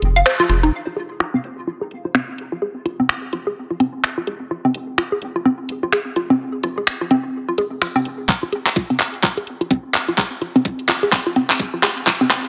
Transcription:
0.02 F1, closed hi-hat
0.16 F5, closed hi-hat
0.26 C5, finger snap
0.40 F4, closed hi-hat
0.49 F1 F4, closed hi-hat
0.63 D#4, closed hi-hat
0.87 F4
0.96 F1 G#4, closed hi-hat
1.20 F4, finger snap
1.34 C4
1.44 F1, closed hi-hat
1.67 F4
1.81 G#4
1.91 F1, closed hi-hat
2.05 F4
2.15 C4, finger snap
2.38 F1, closed hi-hat
2.52 F4
2.62 G#4
2.85 F1 F4, closed hi-hat
3.00 C4
3.09 finger snap
3.33 F1 F4, closed hi-hat
3.47 G#4
3.70 F4
3.80 F1 C4, closed hi-hat
4.04 finger snap
4.18 F4
4.27 F1 G#4, closed hi-hat
4.51 F4
4.65 C4
4.74 F1, closed hi-hat
4.98 F4, finger snap
5.12 G#4
5.22 F1, closed hi-hat
5.36 F4
5.45 C4
5.69 F1, closed hi-hat
5.83 F4
5.92 G#4, finger snap
6.16 F1 F4, closed hi-hat
6.30 C4
6.63 F1 F4, closed hi-hat
6.78 G#4
6.87 finger snap
7.01 F4
7.11 F1 C4, closed hi-hat
7.49 F4
7.58 F1 G#4, closed hi-hat
7.82 F4, finger snap
7.96 C4
8.05 F1, closed hi-hat
8.29 kick, clap
8.43 F4
8.52 G#4, closed hi-hat
8.66 clap, closed hi-hat
8.76 F4, kick
8.90 C4, closed hi-hat
9.00 clap, closed hi-hat
9.14 closed hi-hat
9.23 F4, kick, clap
9.37 G#4, closed hi-hat
9.47 closed hi-hat
9.61 F4, closed hi-hat
9.71 C4, kick
9.94 clap, closed hi-hat
10.08 F4, closed hi-hat
10.18 G#4, kick, clap
10.42 F4, closed hi-hat
10.56 C4, closed hi-hat
10.65 kick
10.79 closed hi-hat
10.89 F4, clap, closed hi-hat
11.03 G#4, closed hi-hat
11.12 kick, clap
11.26 F4, closed hi-hat
11.36 C4, closed hi-hat
11.50 clap, closed hi-hat
11.60 kick
11.74 F4
11.83 G#4, clap, closed hi-hat
11.97 closed hi-hat
12.07 F4, kick, clap
12.21 C4
12.31 clap, closed hi-hat
12.45 closed hi-hat

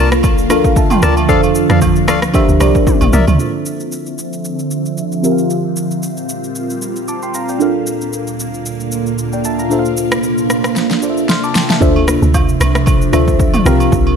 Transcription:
Already playing: C2 D3 F3 A#3 D4 F4 A4 A#4 F5
0.12 cross-stick, shaker
0.23 kick, high agogo, shaker
0.38 shaker
0.50 D2 D4 F4 A4 A#4 F5, cross-stick, high agogo, shaker
0.64 kick, shaker
0.76 E5 A5, kick, shaker
0.90 G5 C6, mid tom, high agogo, shaker
1.02 D2 A#4 D5 A5 D6, cross-stick, shaker
1.17 E5 A5, high agogo, shaker
1.28 F2 C4 D4 F4 A4 C5 D5 F5, kick, shaker
1.43 high agogo, shaker
1.55 shaker
1.69 F2 A4 D5 F5, cross-stick, shaker
1.81 kick, high agogo, low woodblock, shaker
1.96 shaker
2.08 D2 A4 D5 F5, cross-stick, high agogo, shaker
2.22 cross-stick, shaker
2.34 D4 G4 A#4 C5 E5, kick, high agogo, shaker
2.49 D2, shaker
2.60 C2 D4 G4 A#4 C5 D5, cross-stick, high agogo, shaker
2.75 kick, shaker
2.87 kick, high tom, shaker
3.01 A#1, mid tom, high agogo, shaker
3.13 C2 A#4 D5 E5, mid tom, shaker
3.27 D2, floor tom, high agogo, shaker
3.38 D3 F3 C4 D4 F4 A4 C5 E5, shaker
3.66 shaker
3.80 shaker
3.92 shaker
4.06 shaker
4.18 shaker
4.33 shaker
4.45 shaker
4.59 shaker
4.71 shaker
4.86 shaker
4.98 shaker
5.12 shaker
5.23 A#2 G3 C4 F4 G4 A#4 E5, shaker
5.32 F5
5.38 shaker
5.50 shaker
5.76 shaker
5.91 shaker
6.03 shaker
6.17 shaker
6.29 shaker
6.44 shaker
6.55 shaker
6.70 shaker
6.82 shaker
6.96 shaker
7.08 A5 D6, shaker
7.22 G5 C6, shaker
7.34 F5 A#5, shaker
7.48 D5 G5, shaker
7.59 D2 A#3 D4 F4 A4 A#4 F5, shaker
7.87 shaker
8.01 shaker
8.13 shaker
8.27 shaker
8.39 shaker
8.54 shaker
8.66 shaker
8.80 shaker
8.92 shaker
9.06 shaker
9.18 shaker
9.33 D5 G5, shaker
9.44 E5 A5, shaker
9.59 F5 A#5, shaker
9.70 C3 D4 F4 A4 C5 E5, shaker
9.79 F5
9.85 shaker
9.97 shaker
10.12 cross-stick, shaker
10.23 shaker
10.38 shaker
10.50 cross-stick, shaker
10.64 cross-stick, shaker
10.76 snare, shaker
10.91 snare, shaker
11.02 D4 F4 A4 C5 D5, shaker
11.10 E5
11.17 shaker
11.29 C6 F6, snare, shaker
11.43 A5 D6, shaker
11.55 G5 C6, snare, shaker
11.70 E5 A5, snare, shaker
11.81 D2 C3 F3 D4 F4 A4 C5 E5, kick, shaker
11.96 high agogo
12.08 cross-stick, shaker
12.22 D2, shaker
12.34 kick, high agogo, low woodblock, shaker
12.49 shaker
12.60 C2, cross-stick, high agogo, shaker
12.75 cross-stick, shaker
12.86 kick, high agogo, shaker
13.02 shaker
13.13 D2 D4 F4 A4 C5 E5, cross-stick, high agogo, shaker
13.28 kick, shaker
13.40 kick, shaker
13.54 mid tom, high agogo, shaker
13.65 C2 C3 G3 A#3 C4 F4 G4 A#4 F5, cross-stick, shaker
13.80 high agogo, shaker
13.92 C2, kick, shaker
14.07 high agogo

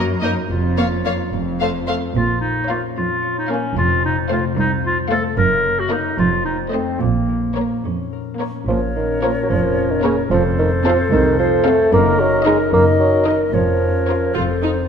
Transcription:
Already playing: F#2 F#3 A#3 D#4 A#4
0.21 A#3 D#4 A#4 D#5
0.48 F1 F2 F4
0.77 A#3 C#4 C#5 F5
1.04 A#3 F4 A#4 C#5 F5
1.32 F1 F2
1.60 A3 C4 C5 F5
1.87 A3 F4 A4 C5 F5
2.14 A#1 A#2 F4
2.41 F3 D#4
2.68 A#3 C#4 F4 C#5 F5
2.96 F2 F4
3.22 C#5
3.38 D#4
3.49 A#3 C#4 A#4 C#5 F5
3.76 F1 F2 F4
4.04 C3 D#4
4.29 A3 C4 F4 C5 F5
4.57 C2 D#4 F4
4.84 F4 C5
5.09 A3 A4 C5 F5
5.36 F#1 F#2 A#4
5.64 A#3
5.79 F#4
5.91 A#3 D#4 A#4 D#5
6.17 F1 F2 F4
6.45 C4 D#4
6.72 A3 C4 D#4 A4 C5 D#5
7.00 A#1 A#2 A#3
7.29 F3
7.56 A#3 A#4 C#5
7.84 F2 C#4
8.13 A#4
8.40 A#3 C#4 A#4 C#5
8.67 A#1 A#2 F3 C#4 A#4 C#5
8.96 D#3 A#3
9.22 F3 A#3 A#4 C#5
9.43 F#3
9.49 F1 F2 F3 C#4
9.78 C#5
9.91 D#3
10.04 C#3 A#3 A#4 C#5
10.30 F1 F2 F3 C4 A4 C5
10.59 D#3 A3
10.85 F3 C4 A4 C5 F5
11.12 C2 D#3 A4
11.39 F3 C5
11.65 A3 C4 A4 F5
11.92 F#1 F#2 A#3 D#4 A#4 D#5
12.18 F#3 A#3
12.45 G#3 D#4 A#4 D#5
12.72 F#1 F#2 A#3 D#4 A#4 D#5
12.99 F#3 D#5
13.26 D#3 D#4 A#4 D#5
13.52 F1 F2 F3 C#4 A#4 C#5
13.81 C#4
14.07 F4 A#4 C#5
14.34 F1 F2 C4 F4 A4 C5
14.62 C4 D#4

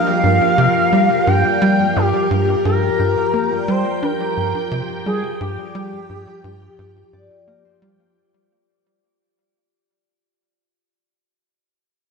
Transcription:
Already playing: F3 G3 F4 A#4 F5 G5
0.06 G4
0.23 G2
0.41 G4
0.58 C3 G4
0.93 G3 G4
1.10 G4
1.27 G2 G5
1.44 G3
1.61 G3 G5
1.96 G2 G4
2.13 G4
2.31 G2
2.48 G4
2.65 G2 G4 A#4 G5
2.99 G2 G4
3.17 G4
3.34 A#3
3.51 G3
3.68 G3 C5 G5
4.03 D4 G4 A#4
4.20 G4
4.37 G2
4.55 G4
4.71 C3 G4
5.06 G3 G4 G#4
5.24 G4
5.41 G2 G4
5.58 G3
5.75 G3 G5
6.09 G2 G4
6.27 G4
6.44 G2
6.62 G4
6.79 G2 G4
7.13 G2 D5
7.30 G4
7.48 A#3 A#4
7.65 C5
7.82 G3 F4

